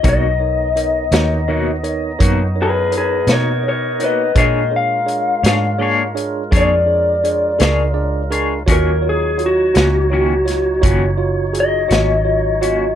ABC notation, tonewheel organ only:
X:1
M:12/8
L:1/8
Q:3/8=56
K:Ebm
V:1 name="Tonewheel organ"
[=B,^D^d]12 | [A,FB]12 | [G,Ed]12 |]